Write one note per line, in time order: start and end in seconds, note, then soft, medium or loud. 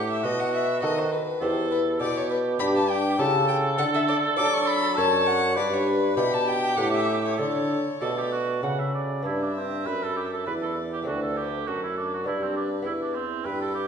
0.00 0.20 A2 medium
0.00 0.23 A2 medium
0.00 0.20 B3 soft
0.00 0.20 E4 soft
0.00 0.20 G4 soft
0.00 0.22 G4 medium
0.10 0.25 E5 medium
0.23 0.79 B2 soft
0.23 0.82 B2 medium
0.23 1.12 F#4 medium
0.23 0.41 D#5 medium
0.40 0.53 F#5 medium
0.53 0.82 E5 medium
0.83 1.17 D#3 medium
0.83 1.20 D#3 medium
0.83 1.37 B3 soft
0.83 1.37 F#4 soft
0.83 1.38 A4 soft
0.83 1.00 D#5 medium
0.99 1.14 C5 medium
1.12 1.43 B4 medium
1.41 1.96 E2 medium
1.41 1.96 B3 soft
1.41 1.97 G4 soft
1.41 2.02 A4 medium
1.41 1.71 C5 medium
1.71 1.79 B4 medium
2.00 2.58 B2 medium
2.00 2.56 B2 medium
2.00 3.18 G4 medium
2.00 2.18 D5 medium
2.17 2.30 C#5 medium
2.30 2.38 B4 medium
2.59 3.15 G2 medium
2.59 3.18 G2 medium
2.59 3.15 D4 medium
2.59 3.15 G4 medium
2.59 2.65 B5 medium
2.76 2.91 A5 medium
2.89 3.21 G5 medium
3.19 3.74 C#3 medium
3.19 3.80 C#3 medium
3.19 3.74 E4 soft
3.19 3.75 G4 soft
3.19 4.99 A4 loud
3.19 3.75 A4 soft
3.19 3.48 A5 medium
3.48 3.56 G5 medium
3.78 4.39 D3 medium
3.78 4.34 D3 medium
3.78 3.84 F#5 medium
3.94 4.00 E5 medium
4.08 4.16 D5 medium
4.37 4.97 F#3 medium
4.37 4.94 F#3 medium
4.37 4.94 D4 medium
4.37 4.94 F#4 medium
4.37 4.94 A4 medium
4.37 4.55 D6 loud
4.54 4.68 C#6 medium
4.67 4.96 B5 loud
4.97 5.59 F#2 medium
4.97 5.53 F#2 medium
4.97 5.53 D4 soft
4.97 5.53 F#4 medium
4.97 5.54 A4 soft
4.97 5.58 C#5 medium
4.97 5.28 A5 medium
5.26 5.56 F#5 loud
5.56 6.13 G2 medium
5.56 6.16 G2 medium
5.56 6.16 B4 medium
5.56 5.75 D5 medium
5.73 5.88 C#5 medium
5.87 6.18 B4 medium
6.16 6.76 B2 medium
6.16 6.74 B2 medium
6.16 6.74 D4 soft
6.16 6.74 E4 soft
6.16 7.40 G4 medium
6.16 6.74 G4 medium
6.16 6.35 B5 medium
6.34 6.49 A5 medium
6.48 6.78 G5 medium
6.77 7.38 A2 medium
6.77 7.35 A2 medium
6.77 7.35 C#4 soft
6.77 7.36 E4 soft
6.77 7.36 G4 soft
6.77 6.92 F#5 medium
6.92 7.23 E5 medium
7.25 7.39 C#5 medium
7.38 7.75 D3 medium
7.38 7.79 D3 medium
7.38 7.84 A4 medium
7.38 8.03 C#5 medium
8.01 8.59 B2 medium
8.01 8.59 A3 soft
8.01 8.59 F#4 medium
8.01 8.19 A4 medium
8.01 8.63 D5 medium
8.18 8.31 G4 medium
8.32 8.62 F#4 medium
8.63 9.24 C#3 medium
8.63 9.21 C#3 medium
8.63 9.21 A3 soft
8.63 9.21 F#4 soft
8.63 8.81 F#5 medium
8.80 8.94 E5 medium
8.94 9.25 D5 medium
9.22 9.82 G2 soft
9.22 11.02 B3 soft
9.22 11.02 D4 soft
9.22 9.44 E4 medium
9.22 10.49 E5 medium
9.43 9.56 D4 soft
9.56 9.88 C4 medium
9.85 10.43 F#2 soft
9.85 10.46 F#2 soft
9.85 10.04 B4 medium
10.03 10.18 A4 medium
10.17 10.32 G4 medium
10.33 10.46 A4 medium
10.47 11.03 E2 soft
10.47 11.09 E2 medium
10.47 10.54 B4 medium
10.47 11.09 D5 soft
10.62 10.75 A4 medium
10.93 10.99 G4 medium
11.02 12.21 A3 soft
11.02 12.21 C4 soft
11.02 12.22 D4 soft
11.06 11.63 D2 soft
11.06 11.67 D2 medium
11.06 11.21 F#4 medium
11.06 11.69 B4 medium
11.22 11.38 A4 medium
11.37 11.68 G4 medium
11.67 12.23 F#2 soft
11.67 12.28 F#2 soft
11.67 11.82 F#4 medium
11.67 12.27 A4 soft
11.83 11.97 E4 medium
11.97 12.12 D4 medium
12.14 12.27 F#4 medium
12.24 12.82 G2 soft
12.24 12.85 G2 medium
12.24 12.81 B3 soft
12.24 12.83 D4 soft
12.24 12.44 E4 medium
12.24 13.43 B4 soft
12.43 12.56 C4 medium
12.56 12.70 D4 medium
12.82 13.41 E2 soft
12.82 13.44 E2 soft
12.82 13.88 B3 soft
12.82 13.88 E4 soft
12.82 12.92 E4 medium
13.02 13.17 D4 medium
13.15 13.47 C4 medium
13.45 13.88 G2 soft
13.45 13.60 B4 medium
13.45 13.88 G5 medium
13.62 13.74 A4 medium
13.74 13.88 G4 medium